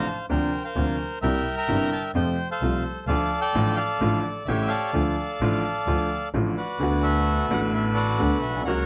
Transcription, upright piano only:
0.29 D2 C3 D3 F3 A#3 D4
0.75 D2 C3 D3 F3 A#3 D4
1.23 C2 C3 G3 A#3 E4
1.68 G1 G2 C3 G3 A#3 E4
2.15 F2 C3 F3 A3 F4
2.62 C2 C3 F3 A3 F4
3.09 D2 D3 F3 A3 F4
3.55 A1 A2 D3 F3 A3 F4
4.01 A1 A2 D3 F3 A3 F4
4.48 A1 A2 C#3 G3 A3 E4
4.93 D2 D3 F3 A3 F4
5.41 A1 A2 D3 F3 A3 F4
5.87 D2 D3 F3 A3 F4
6.34 A1 A2 D3 F3 A3 F4
6.79 D2 D3 A3 B3 F#4
7.49 A1 A2 D3 A3 B3
7.53 F#4
8.19 D2 D3 A3 B3 F#4
8.50 A#1
8.56 B1
8.62 C2 C#3
8.67 C#2 F#3 A#3 F#4

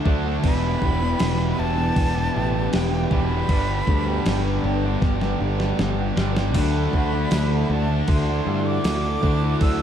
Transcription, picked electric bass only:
0.06 D2
0.44 E1
0.82 E1
1.21 E1
1.59 E1
1.97 E1
2.36 A1
2.74 E1
3.11 E1
3.50 G1
3.88 D2
4.26 G1
4.64 G1
5.02 G1
5.40 G1
5.79 G1
6.17 G1
6.55 D2
6.93 D2
7.32 D2
7.70 D2
8.08 D2
8.47 G2
8.84 D2
9.23 D2
9.61 D2

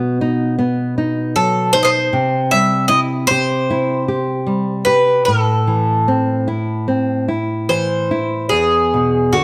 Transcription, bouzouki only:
Already playing: F#4
1.36 A4
1.73 C5
1.83 C5 D#5
2.51 E5
2.88 D#5
3.27 C5
4.85 B4
5.25 A4
7.69 C5
8.49 G#4
9.33 F#4

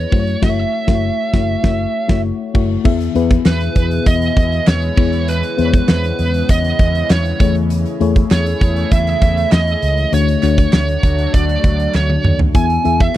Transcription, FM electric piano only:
Already playing: E3 B3 E4 G#4 B4 C#5
0.12 A3 E4 F#4 C5
0.19 C#5
0.42 A3 E4 F#4
0.49 C#5
0.87 A3 E4 F#4
0.95 C#5
1.33 A3 E4 F#4 C#5
1.63 A3 E4 F#4 C#5
2.08 A3 E4 F#4 C#5
2.54 A3 E4 F#4 C#5
2.84 E3 B3 E4 G#4 E5
3.15 B3 E4 G#4 B4
4.97 E3 B3 E4 G#4 C#5
5.57 B3 E4 G#4 C5
5.65 C#5
7.40 E3 A3 E4 G#4 C#5
8.00 A3 E4 G#4 C#5
10.12 D3 A3 D4 F#4 C#5
10.42 A3 D4 F#4 C#5
12.54 E3 B3 E4 G#4 E5
12.84 B3 E4 G#4 E5

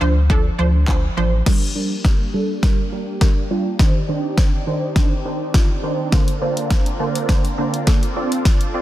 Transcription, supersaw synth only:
1.47 A#3 D4 G4
3.80 C4 D4 D#4 D5
6.12 D3 F4 A#4
8.16 D4 A4

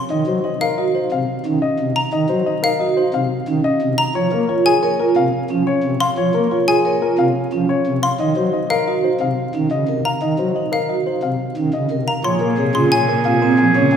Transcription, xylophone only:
Already playing: C6
0.61 F5
1.96 A#5
2.64 F5
3.98 A#5
4.66 G#5
6.00 C6
6.68 G#5
8.03 C6
8.70 F5
10.05 A#5
10.73 F5
12.08 A#5
12.24 C6
12.75 C6
12.92 G#5

